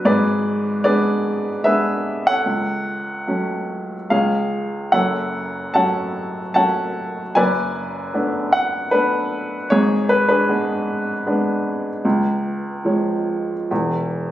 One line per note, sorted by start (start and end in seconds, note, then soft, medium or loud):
0.05 2.42 G#1 medium
0.05 2.42 G#2 medium
0.05 0.84 G#4 medium
0.05 0.84 B4 medium
0.05 0.83 D5 medium
0.84 1.49 G#3 soft
0.84 1.49 B3 soft
0.84 1.49 D4 medium
0.84 1.64 G#4 medium
0.84 1.64 B4 medium
0.84 1.67 D5 medium
1.64 2.29 G#3 soft
1.64 2.30 B3 soft
1.64 2.30 D4 soft
1.64 2.43 G#4 medium
1.64 2.43 B4 medium
1.64 2.27 E5 medium
2.27 4.08 A4 medium
2.27 4.08 C#5 medium
2.27 4.17 F#5 loud
2.46 4.07 C#2 medium
3.27 3.94 F#3 soft
3.27 3.94 A3 soft
3.27 3.94 C#4 soft
4.10 4.91 C#2 medium
4.10 4.90 G#4 soft
4.10 4.90 C#5 medium
4.10 4.95 F5 medium
4.92 7.32 F#1 medium
4.92 7.32 F#2 medium
4.92 6.12 A4 medium
4.92 5.74 C#5 medium
4.92 5.74 F#5 medium
5.74 6.40 F#3 soft
5.74 6.40 A3 soft
5.74 6.40 C#4 soft
5.74 6.54 C#5 medium
5.74 6.54 F#5 medium
5.74 6.52 A5 medium
6.54 7.20 F#3 soft
6.54 7.20 A3 soft
6.54 7.20 C#4 soft
6.54 7.32 C#5 medium
6.54 7.32 F#5 medium
6.54 7.31 A5 medium
7.35 9.68 F#1 medium
7.35 9.68 F#2 medium
7.35 8.50 B4 medium
7.35 8.50 D5 medium
7.35 8.49 G#5 medium
8.14 8.77 A3 soft
8.14 8.77 B3 soft
8.14 8.77 D4 medium
8.53 8.94 F#5 medium
8.91 9.56 A3 soft
8.91 9.56 B3 soft
8.91 9.56 D4 medium
8.91 9.67 B4 medium
9.70 12.01 G#1 medium
9.70 12.01 G#2 medium
9.70 10.29 G#4 medium
9.70 10.11 C#5 medium
10.09 10.27 B4 medium
10.29 10.49 D4 medium
10.29 13.67 G#4 medium
10.29 13.66 B4 medium
10.49 11.11 G#3 medium
10.49 11.11 B3 soft
10.49 11.12 D4 medium
11.26 11.89 G#3 soft
11.26 11.89 B3 soft
11.26 11.90 D4 medium
12.05 13.67 C#2 medium
12.85 13.53 F3 soft
12.85 13.53 G#3 soft
12.85 13.54 C#5 soft
13.71 14.31 E1 soft
13.71 14.31 E2 medium